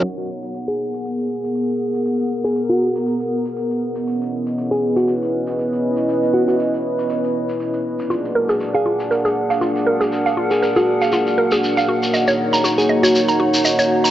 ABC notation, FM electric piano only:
X:1
M:4/4
L:1/16
Q:"Swing 16ths" 1/4=119
K:G#m
V:1 name="FM electric piano"
z4 z G3 z8 | z3 G z F3 z8 | z4 z G2 F z8 | z2 F F z12 |
z4 z G3 z8 | z3 G z F3 z8 | z4 z G2 F z8 |]